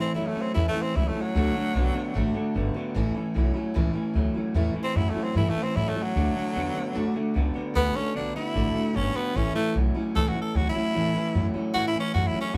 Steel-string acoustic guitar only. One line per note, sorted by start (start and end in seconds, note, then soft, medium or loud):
0.00 0.14 A3 soft
0.00 0.15 C#4 soft
0.00 0.14 E4 medium
0.13 0.34 E3 medium
0.13 0.35 A3 medium
0.13 0.35 C#4 medium
0.13 0.33 E4 medium
0.34 0.55 A3 soft
0.34 0.55 C#4 medium
0.34 0.55 E4 medium
0.54 0.75 A2 medium
0.54 0.75 E3 medium
0.54 0.75 A3 medium
0.54 0.75 C#4 medium
0.54 0.72 E4 medium
0.74 0.94 A3 soft
0.74 0.95 C#4 soft
0.74 0.94 E4 medium
0.94 1.15 E3 medium
0.94 1.15 A3 medium
0.94 1.15 C#4 medium
0.94 1.14 E4 medium
1.15 1.34 A3 soft
1.15 1.36 C#4 medium
1.15 1.35 E4 medium
1.34 1.55 D3 medium
1.34 1.55 A3 loud
1.34 1.55 D4 medium
1.34 1.53 F#4 loud
1.54 1.74 A3 soft
1.54 1.75 D4 medium
1.54 1.75 F#4 soft
1.74 1.95 D3 medium
1.74 1.95 A3 medium
1.74 1.94 D4 medium
1.74 1.92 F#4 medium
1.94 2.14 A3 soft
1.94 2.15 D4 medium
1.94 2.15 F#4 medium
2.14 2.35 D3 medium
2.14 2.35 A3 medium
2.14 2.35 D4 medium
2.14 2.33 F#4 loud
2.34 2.54 A3 soft
2.34 2.55 D4 medium
2.34 2.55 F#4 medium
2.54 2.75 D3 medium
2.54 2.75 A3 medium
2.54 2.75 D4 medium
2.54 2.73 F#4 medium
2.74 2.95 A3 medium
2.74 2.96 D4 medium
2.74 2.95 F#4 medium
2.94 3.15 A2 loud
2.94 3.15 E3 loud
2.94 3.16 A3 loud
2.94 3.15 C#4 loud
2.94 3.13 E4 loud
3.14 3.34 A3 medium
3.14 3.35 C#4 medium
3.14 3.35 E4 medium
3.34 3.55 E3 medium
3.34 3.55 A3 medium
3.34 3.55 C#4 medium
3.34 3.53 E4 medium
3.54 3.74 A3 medium
3.54 3.75 C#4 medium
3.54 3.75 E4 medium
3.74 3.95 A2 loud
3.74 3.95 E3 loud
3.74 3.95 A3 medium
3.74 3.94 C#4 loud
3.74 3.92 E4 loud
3.93 4.14 A3 soft
3.93 4.15 C#4 medium
3.93 4.14 E4 medium
4.14 4.35 E3 medium
4.14 4.35 A3 medium
4.14 4.35 C#4 medium
4.14 4.33 E4 medium
4.34 4.54 A3 medium
4.34 4.55 C#4 medium
4.34 4.55 E4 medium
4.54 4.75 A2 medium
4.54 4.75 E3 medium
4.54 4.76 A3 loud
4.54 4.75 C#4 loud
4.54 4.74 E4 loud
4.75 4.94 A3 soft
4.75 4.96 C#4 soft
4.75 4.95 E4 soft
4.94 5.15 E3 medium
4.94 5.16 A3 medium
4.94 5.15 C#4 medium
4.94 5.13 E4 medium
5.14 5.34 A3 soft
5.14 5.35 C#4 medium
5.14 5.35 E4 medium
5.34 5.55 A2 medium
5.34 5.55 E3 medium
5.34 5.56 A3 medium
5.34 5.55 C#4 medium
5.34 5.53 E4 medium
5.54 5.75 A3 soft
5.54 5.76 C#4 medium
5.54 5.75 E4 medium
5.75 5.95 E3 medium
5.75 5.96 A3 medium
5.75 5.95 C#4 medium
5.75 5.94 E4 medium
5.95 6.15 A3 soft
5.95 6.16 C#4 medium
5.95 6.15 E4 medium
6.15 6.35 D3 medium
6.15 6.36 A3 medium
6.15 6.35 D4 medium
6.15 6.33 F#4 medium
6.35 6.54 A3 soft
6.35 6.54 D4 medium
6.35 6.55 F#4 medium
6.53 6.74 D3 medium
6.53 6.75 A3 medium
6.53 6.75 D4 medium
6.53 6.73 F#4 medium
6.74 6.93 A3 medium
6.74 6.94 D4 medium
6.74 6.94 F#4 medium
6.93 7.14 D3 medium
6.93 7.15 A3 medium
6.93 7.14 D4 loud
6.93 7.13 F#4 loud
7.14 7.34 A3 medium
7.14 7.35 D4 medium
7.14 7.35 F#4 medium
7.34 7.55 D3 medium
7.34 7.55 A3 medium
7.34 7.55 D4 medium
7.34 7.53 F#4 medium
7.54 7.74 A3 soft
7.54 7.74 D4 medium
7.54 7.75 F#4 medium
7.74 7.95 D3 medium
7.74 7.95 A3 medium
7.74 7.95 D4 medium
7.74 7.93 F#4 loud
7.94 8.15 A3 soft
7.94 8.16 D4 soft
7.94 8.15 F#4 medium
8.15 8.35 D3 medium
8.15 8.36 A3 medium
8.15 8.35 D4 medium
8.15 8.33 F#4 medium
8.34 8.55 A3 soft
8.34 8.55 D4 medium
8.34 8.55 F#4 medium
8.55 8.75 D3 medium
8.55 8.76 A3 medium
8.55 8.75 D4 medium
8.55 8.73 F#4 medium
8.74 8.94 A3 soft
8.74 8.94 D4 medium
8.74 8.95 F#4 medium
8.93 9.14 D3 medium
8.93 9.15 A3 medium
8.93 9.14 D4 medium
8.93 9.13 F#4 medium
9.14 9.35 A3 medium
9.14 9.35 D4 medium
9.14 9.35 F#4 medium
9.35 9.55 A2 medium
9.35 9.55 E3 medium
9.35 9.55 A3 medium
9.35 9.55 C#4 medium
9.35 9.53 E4 loud
9.54 9.74 A3 medium
9.54 9.75 C#4 medium
9.54 9.75 E4 medium
9.74 9.95 E3 medium
9.74 9.95 A3 medium
9.74 9.95 C#4 medium
9.74 9.93 E4 medium
9.94 10.15 A3 medium
9.94 10.15 C#4 medium
9.94 10.15 E4 medium
10.15 10.35 A2 medium
10.15 10.35 E3 loud
10.15 10.36 A3 medium
10.15 10.35 C#4 loud
10.15 10.33 E4 medium
10.34 10.54 A3 soft
10.34 10.55 C#4 soft
10.34 10.55 E4 soft
10.54 10.74 E3 medium
10.54 10.75 A3 medium
10.54 10.76 C#4 medium
10.54 10.74 E4 medium
10.75 10.95 A3 soft
10.75 10.96 C#4 medium
10.75 10.95 E4 medium
10.95 11.15 A2 medium
10.95 11.15 E3 medium
10.95 11.16 A3 medium
10.95 11.15 C#4 medium
10.95 11.13 E4 medium
11.14 11.34 A3 soft
11.14 11.36 C#4 medium
11.14 11.35 E4 medium
11.34 11.54 E3 medium
11.34 11.55 A3 medium
11.34 11.55 C#4 medium
11.34 11.53 E4 medium
11.54 11.74 A3 medium
11.54 11.75 C#4 medium
11.54 11.74 E4 medium
11.74 11.95 A2 medium
11.74 11.95 E3 medium
11.74 11.95 A3 medium
11.74 11.95 C#4 medium
11.74 11.93 E4 loud
11.94 12.14 A3 soft
11.94 12.15 C#4 medium
11.94 12.14 E4 medium
12.14 12.34 E3 medium
12.14 12.35 A3 medium
12.14 12.34 C#4 medium
12.14 12.32 E4 medium
12.34 12.55 A3 soft
12.34 12.55 C#4 medium
12.34 12.54 E4 medium
12.54 12.57 E2 medium